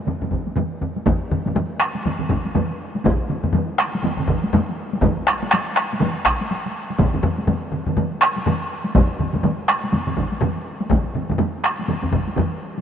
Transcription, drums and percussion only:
0.07 taiko low-mid medium
0.07 taiko mid medium
0.07 taiko high medium
0.22 taiko low-mid medium
0.22 taiko mid medium
0.31 taiko medium
0.31 taiko low-mid medium
0.31 taiko mid medium
0.47 taiko high soft
0.56 taiko low-mid medium
0.56 taiko mid loud
0.56 taiko high medium
0.81 taiko low-mid medium
0.81 taiko mid medium
0.96 taiko high medium
1.06 taiko medium
1.06 taiko low-mid loud
1.06 taiko mid loud
1.06 taiko high medium
1.31 taiko low-mid medium
1.31 taiko mid medium
1.46 taiko low-mid medium
1.46 taiko mid medium
1.46 taiko high medium
1.55 taiko low-mid loud
1.55 taiko mid loud
1.55 taiko high medium
1.80 taiko rim medium
1.95 taiko high medium
2.05 taiko low-mid medium
2.05 taiko mid medium
2.05 taiko high medium
2.19 taiko low-mid medium
2.19 taiko mid medium
2.29 taiko medium
2.29 taiko low-mid medium
2.29 taiko mid loud
2.45 taiko high soft
2.55 taiko low-mid loud
2.55 taiko mid loud
2.55 taiko high medium
2.70 taiko high soft
2.95 taiko high medium
3.04 taiko loud
3.04 taiko low-mid loud
3.04 taiko mid loud
3.04 taiko high medium
3.29 taiko low-mid medium
3.29 taiko mid medium
3.44 taiko low-mid medium
3.44 taiko mid medium
3.44 taiko high medium
3.53 taiko low-mid medium
3.53 taiko mid loud
3.53 taiko high medium
3.78 taiko rim medium
3.80 taiko rim medium
3.95 taiko high medium
4.02 taiko low-mid medium
4.02 taiko mid medium
4.02 taiko high medium
4.17 taiko low-mid medium
4.17 taiko mid medium
4.28 taiko medium
4.28 taiko low-mid medium
4.28 taiko mid loud
4.44 taiko high medium
4.53 taiko low-mid loud
4.53 taiko mid loud
4.53 taiko high medium
4.69 taiko high medium
4.93 taiko high medium
5.02 taiko loud
5.02 taiko low-mid loud
5.02 taiko mid loud
5.02 taiko high medium
5.27 taiko rim medium
5.43 taiko high medium
5.51 taiko rim medium
5.51 taiko high medium
5.76 taiko rim medium
5.93 taiko high medium
6.00 taiko low-mid medium
6.00 taiko mid loud
6.00 taiko high medium
6.25 taiko rim medium
6.25 taiko medium
6.41 taiko high medium
6.51 taiko high medium
6.66 taiko high medium
6.90 taiko high medium
6.99 taiko loud
6.99 taiko low-mid medium
6.99 taiko mid medium
6.99 taiko high medium
7.14 taiko low-mid medium
7.14 taiko mid medium
7.23 taiko low-mid loud
7.23 taiko mid medium
7.39 taiko high medium
7.48 taiko low-mid loud
7.48 taiko mid loud
7.48 taiko high medium
7.72 taiko low-mid medium
7.72 taiko mid medium
7.87 taiko low-mid medium
7.87 taiko mid medium
7.87 taiko high medium
7.97 taiko low-mid medium
7.97 taiko mid loud
7.97 taiko high medium
8.21 taiko rim medium
8.36 taiko high medium
8.46 taiko low-mid loud
8.46 taiko mid loud
8.46 taiko high medium
8.85 taiko high medium
8.95 taiko medium
8.95 taiko low-mid loud
8.95 taiko mid loud
8.95 taiko high medium
9.19 taiko low-mid medium
9.19 taiko mid medium
9.34 taiko low-mid medium
9.34 taiko mid medium
9.34 taiko high medium
9.44 taiko low-mid medium
9.44 taiko mid loud
9.44 taiko high medium
9.68 taiko rim medium
9.84 taiko high soft
9.92 taiko low-mid medium
9.92 taiko mid medium
9.92 taiko high medium
10.07 taiko low-mid medium
10.07 taiko mid medium
10.17 taiko medium
10.17 taiko low-mid medium
10.17 taiko mid loud
10.32 taiko high medium
10.41 taiko low-mid loud
10.41 taiko mid loud
10.41 taiko high medium
10.56 taiko high soft
10.81 taiko high medium
10.90 taiko loud
10.90 taiko low-mid loud
10.90 taiko mid loud
10.90 taiko high medium
11.15 taiko low-mid medium
11.15 taiko mid medium
11.30 taiko low-mid medium
11.30 taiko mid medium
11.30 taiko high medium
11.39 taiko low-mid loud
11.39 taiko mid loud
11.39 taiko high medium
11.64 taiko rim medium
11.79 taiko high soft
11.88 taiko low-mid medium
11.88 taiko mid medium
11.88 taiko high medium
12.03 taiko low-mid medium
12.03 taiko mid medium
12.12 taiko medium
12.12 taiko low-mid medium
12.12 taiko mid medium
12.28 taiko high medium
12.36 taiko low-mid loud
12.36 taiko mid loud
12.36 taiko high medium
12.78 taiko high medium

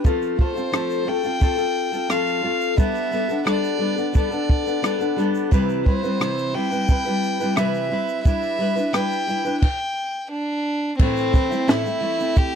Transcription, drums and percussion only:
0.05 kick medium
0.05 shaker medium
0.22 shaker soft
0.39 kick medium
0.56 shaker soft
0.73 cross-stick loud
0.73 shaker medium
0.90 shaker soft
1.24 shaker soft
1.40 kick medium
1.40 shaker medium
1.58 shaker soft
1.93 shaker soft
2.10 cross-stick medium
2.10 shaker medium
2.27 shaker soft
2.61 shaker soft
2.78 kick medium
2.78 shaker medium
2.95 shaker soft
3.12 shaker soft
3.29 shaker soft
3.46 cross-stick loud
3.46 shaker medium
3.64 shaker medium
3.97 shaker soft
4.14 kick medium
4.14 shaker medium
4.31 shaker soft
4.49 kick medium
4.67 shaker medium
4.84 cross-stick loud
4.84 shaker medium
5.00 shaker soft
5.18 cross-stick soft
5.18 shaker soft
5.34 shaker medium
5.52 kick loud
5.52 shaker medium
5.69 shaker soft
5.86 kick medium
6.04 shaker soft
6.21 cross-stick loud
6.21 shaker medium
6.38 shaker medium
6.72 shaker soft
6.88 kick medium
6.88 shaker medium
7.05 shaker soft
7.23 shaker medium
7.40 shaker soft
7.57 cross-stick loud
7.57 shaker medium
7.74 shaker soft
8.08 shaker medium
8.25 kick loud
8.25 shaker medium
8.42 shaker soft
8.77 shaker soft
8.94 cross-stick loud
8.94 shaker medium
9.11 shaker soft
9.28 shaker soft
9.45 shaker soft
9.62 kick loud
9.62 crash medium
10.99 kick loud
10.99 crash loud
11.17 shaker medium
11.33 kick medium
11.33 shaker soft
11.52 shaker medium
11.69 snare loud
11.69 shaker medium
11.86 shaker medium
12.20 shaker medium
12.36 kick medium
12.36 shaker medium

